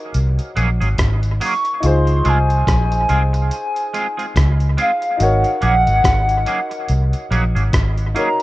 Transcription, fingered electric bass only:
0.15 0.38 C2 medium
0.57 0.80 A#1 medium
0.81 0.98 G#1 medium
0.99 1.39 G#1 medium
1.84 2.23 C#2 loud
2.26 2.66 C2 medium
2.68 3.08 A#1 medium
3.10 3.50 C2 medium
4.36 4.76 C#2 medium
5.20 5.43 G#1 loud
5.63 5.86 A#1 medium
5.87 6.04 G#1 medium
6.05 6.45 G#1 medium
6.90 7.12 C2 loud
7.31 7.54 A#1 medium
7.55 7.73 G#1 medium
7.74 8.14 G#1 medium

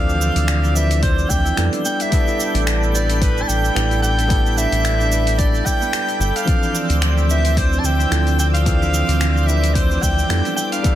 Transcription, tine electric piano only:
0.00 0.73 E3 medium
0.00 0.73 F3 medium
0.00 0.74 C4 medium
0.00 0.75 D4 medium
0.00 0.76 E4 medium
0.00 1.59 A4 loud
0.00 0.77 B4 medium
0.73 1.53 F3 medium
0.73 1.54 C4 medium
0.73 1.54 D4 medium
0.73 1.54 E4 medium
0.73 1.55 B4 medium
1.57 2.09 G3 medium
1.57 2.09 B3 medium
1.57 2.09 D4 medium
1.57 2.09 E4 medium
1.57 2.10 A4 medium
2.10 2.90 G3 medium
2.10 2.90 B3 medium
2.10 2.91 D4 medium
2.10 2.91 E4 medium
2.14 2.92 A4 loud
2.93 3.72 G3 medium
2.93 3.72 B3 medium
2.93 3.73 D4 medium
2.93 3.74 E4 medium
2.93 3.74 B4 medium
3.75 4.26 G3 medium
3.75 4.27 B3 medium
3.75 4.27 D4 medium
3.75 4.27 E4 medium
3.75 4.27 A4 loud
4.28 5.08 G3 loud
4.28 5.08 B3 medium
4.28 5.08 D4 medium
4.28 5.09 E4 medium
4.28 5.09 A4 loud
5.09 5.89 G3 medium
5.09 5.90 B3 medium
5.09 5.90 D4 medium
5.09 5.91 E4 medium
5.09 5.91 B4 medium
6.45 7.27 E3 medium
6.45 7.25 F3 loud
6.45 7.26 C4 medium
6.45 7.26 D4 medium
6.45 7.27 A4 loud
7.27 8.08 F3 medium
7.27 8.08 C4 medium
7.27 8.09 D4 medium
7.27 8.09 E4 medium
7.27 8.09 B4 medium
8.10 8.63 F3 medium
8.10 8.63 C4 medium
8.10 8.63 D4 medium
8.10 8.63 E4 medium
8.10 8.64 A4 loud
8.64 9.45 E3 medium
8.64 9.44 F3 loud
8.64 9.44 C4 medium
8.64 9.45 D4 medium
8.64 9.46 A4 loud
9.46 10.26 F3 medium
9.46 10.26 C4 medium
9.46 10.27 D4 medium
9.46 10.27 E4 medium
9.46 10.28 B4 medium
10.28 10.81 G3 medium
10.28 10.81 B3 medium
10.28 10.81 D4 medium
10.28 10.82 E4 medium
10.28 10.82 A4 medium
10.82 10.95 E3 medium
10.82 10.95 G3 loud
10.82 10.95 B3 medium
10.82 10.95 D4 medium
10.82 10.95 A4 loud

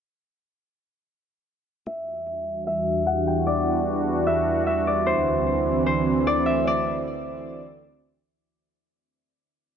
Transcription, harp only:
1.87 2.67 E5 loud
2.67 4.26 E5 medium
3.07 3.33 F#5 medium
3.27 4.83 G5 medium
3.47 4.87 D5 loud
4.27 4.66 E5 medium
4.67 6.39 E5 medium
4.87 6.27 D5 medium
5.06 5.86 C5 loud
5.86 7.84 C5 medium
6.27 6.67 D5 medium
6.46 8.18 E5 medium
6.67 8.52 D5 medium

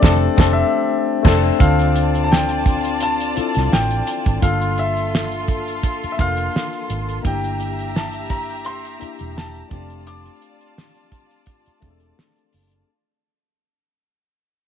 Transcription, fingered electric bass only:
0.03 0.26 F1 loud
0.38 0.62 F1 loud
1.25 1.49 F1 medium
1.60 3.33 D2 loud
3.37 muted fingered electric bass stroke soft
3.57 3.69 C2 medium
3.73 4.00 A1 medium
4.27 4.39 G#1 medium
4.43 5.80 G1 loud
6.04 muted fingered electric bass stroke soft
6.19 6.47 F1 medium
6.90 7.18 G#1 medium
7.25 8.97 G1 loud
9.02 muted fingered electric bass stroke soft
9.21 9.61 E1 medium
9.72 10.28 F1 loud
11.67 muted fingered electric bass stroke soft
11.83 12.11 E1 medium
12.54 12.82 F#1 medium

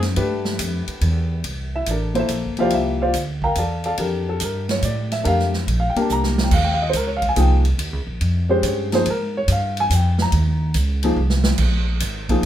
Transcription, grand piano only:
0.17 1.36 A3 medium
0.17 1.36 D4 medium
0.17 1.36 G4 medium
0.17 1.36 B4 medium
1.75 1.88 E4 medium
1.75 1.88 E5 medium
1.90 2.16 D4 medium
1.90 2.14 A4 medium
1.90 2.17 A#4 medium
1.90 2.16 D5 medium
2.14 2.54 A#3 medium
2.14 2.18 E4 medium
2.14 2.55 A4 medium
2.14 2.55 C5 medium
2.19 2.31 E4 medium
2.19 2.31 E5 medium
2.58 3.11 F3 medium
2.58 3.12 A#3 medium
2.58 2.73 E4 medium
2.58 2.72 F4 medium
2.58 3.12 G4 medium
2.58 2.73 C5 medium
2.58 2.73 D5 medium
2.58 2.72 F5 medium
2.74 3.01 E4 medium
2.74 3.01 E5 medium
3.02 3.15 F4 medium
3.02 3.15 C5 medium
3.02 3.15 D5 medium
3.02 3.14 F5 medium
3.44 3.57 A#4 medium
3.44 3.56 F5 medium
3.44 3.57 G5 medium
3.44 3.56 A#5 medium
3.58 3.84 A4 medium
3.58 3.84 D5 medium
3.58 3.84 F5 medium
3.58 3.84 A5 medium
3.86 3.94 A4 medium
3.86 3.94 D5 medium
3.86 3.94 F5 medium
3.86 3.94 A5 medium
3.99 5.18 D4 medium
3.99 5.18 G4 medium
3.99 4.28 A4 medium
3.99 4.43 A#4 medium
4.29 4.41 A4 medium
4.44 4.70 A#4 medium
4.71 4.84 C#5 medium
4.85 5.12 D5 medium
5.12 5.25 E5 medium
5.23 5.50 A3 medium
5.23 5.50 D4 medium
5.23 5.51 G4 medium
5.23 5.51 A#4 medium
5.27 5.44 F5 loud
5.80 5.95 F5 medium
5.90 6.00 G5 medium
5.96 6.50 A#3 medium
5.96 6.50 D4 medium
5.96 6.50 G4 medium
5.96 6.50 A#4 medium
6.01 6.09 A5 medium
6.12 6.44 A#5 loud
6.44 6.51 G5 medium
6.54 6.67 F5 medium
6.65 6.79 G5 medium
6.74 6.77 F5 medium
6.82 6.91 D#5 medium
6.90 6.94 C5 medium
6.97 7.10 A#4 medium
7.07 7.22 C#5 medium
7.17 7.27 F5 medium
7.29 7.36 G#5 medium
7.36 7.62 F3 medium
7.36 7.62 A#3 medium
7.36 7.62 D#4 medium
7.36 7.62 G#4 medium
7.40 7.56 G5 medium
8.49 8.89 G#3 medium
8.49 8.89 C#4 medium
8.49 8.89 G4 medium
8.49 8.90 C5 medium
8.66 8.93 C#5 medium
8.92 9.05 F3 medium
8.92 9.05 A#3 medium
8.92 9.05 D#4 medium
8.92 9.05 G#4 medium
8.92 9.07 C5 medium
9.10 9.36 A#4 medium
9.37 9.49 C#5 loud
9.52 9.78 F5 medium
9.80 9.92 G#5 loud
9.95 10.20 G5 medium
10.22 10.73 A#5 medium
11.04 11.16 F3 medium
11.04 11.16 A#3 medium
11.04 11.16 D#4 medium
11.04 11.16 G#4 medium
12.30 12.45 F3 medium
12.30 12.45 A#3 medium
12.30 12.45 D#4 medium
12.30 12.45 G#4 medium

